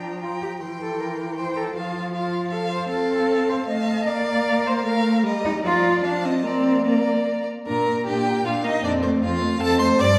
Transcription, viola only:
0.00 0.62 F3 medium
0.60 1.74 E3 medium
1.75 2.88 F3 medium
2.90 3.66 C4 medium
3.69 4.06 A3 medium
4.07 4.84 A#3 medium
4.84 5.25 A3 medium
5.23 5.65 G3 medium
5.63 6.04 F3 medium
6.04 6.45 F3 medium
6.43 7.46 A#3 medium
7.67 7.88 D4 medium
7.87 8.09 A#3 medium
8.07 8.28 D4 medium
8.26 8.45 A#3 medium
8.45 8.66 D4 medium
8.64 8.83 A#3 medium
8.83 9.05 C4 medium
9.03 9.24 A3 medium
9.22 9.43 C4 medium
9.42 9.60 A3 medium
9.60 9.81 C4 medium
9.80 9.99 A3 medium
9.99 10.19 G3 medium

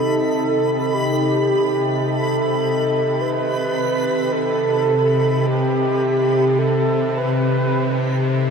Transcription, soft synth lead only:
0.00 0.96 A4 loud
0.94 2.08 G4 loud
2.07 3.22 A4 loud
3.21 4.34 B4 loud
4.32 5.48 A4 loud
5.46 6.60 G4 loud
6.58 7.19 A4 loud
7.18 8.31 B4 loud

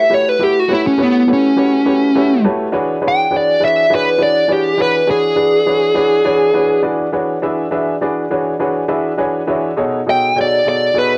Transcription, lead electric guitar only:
0.00 0.12 E5 medium
0.14 0.29 C#5 medium
0.29 0.41 B4 medium
0.44 0.60 G4 medium
0.60 0.71 F#4 medium
0.74 0.86 E4 medium
0.87 1.00 C#4 medium
1.02 1.29 B3 medium
1.33 2.44 C#4 medium
3.08 3.34 G5 medium
3.37 3.63 D5 medium
3.65 3.92 E5 medium
3.95 4.22 B4 medium
4.23 4.50 D5 medium
4.52 4.80 G4 medium
4.82 5.09 B4 medium
5.10 6.82 G#4 medium
10.10 10.37 G5 medium
10.41 10.67 D5 medium
10.69 10.96 D5 medium
10.98 11.18 B4 medium

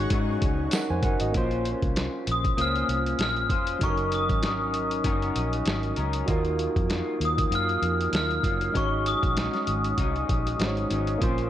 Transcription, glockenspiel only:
2.32 2.61 D#6 medium
2.61 3.21 F6 medium
3.22 3.84 F6 loud
3.83 4.14 C#6 medium
4.15 5.94 D#6 medium
7.25 7.55 D#6 medium
7.55 8.15 F6 loud
8.16 8.78 F6 loud
8.77 9.08 C#6 medium
9.08 10.88 D#6 medium

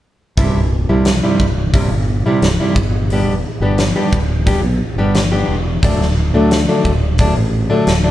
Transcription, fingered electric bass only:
0.37 0.53 C1 medium
0.55 0.85 C1 medium
0.90 1.19 C2 medium
1.40 1.85 C1 medium
1.92 2.22 G1 medium
2.42 2.57 C1 medium
2.76 3.27 G1 medium
3.27 3.42 E1 medium
3.60 3.91 G1 medium
4.12 4.58 D1 medium
4.63 4.78 B1 medium
4.96 5.42 G1 medium
5.49 5.79 E1 medium
5.83 5.98 D1 medium
5.99 6.30 D1 medium
6.34 6.64 D2 medium
6.85 7.30 D1 medium
7.37 7.67 A1 medium
7.87 8.11 D1 medium

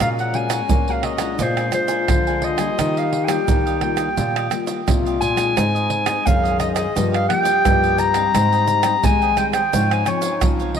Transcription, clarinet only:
0.01 0.09 F5 loud
0.20 0.37 F#5 medium
0.35 0.92 G#5 loud
0.91 1.06 F5 medium
1.04 1.43 D#5 medium
1.42 1.73 C5 medium
1.74 2.46 C5 medium
2.44 3.00 D#5 loud
2.98 3.26 F5 medium
3.24 3.31 G#5 medium
3.29 3.82 G5 medium
3.83 4.83 G5 medium
5.21 6.28 G#5 loud
6.26 6.59 F5 loud
6.60 6.68 D#5 medium
6.75 7.09 D#5 medium
7.14 7.28 F5 loud
7.29 8.01 G5 loud
7.99 9.06 A#5 loud
9.04 9.37 G#5 loud
9.38 9.46 G5 medium
9.54 9.94 G5 loud
9.93 10.09 G#5 loud
10.07 10.50 C#5 medium
10.77 10.80 D#5 loud

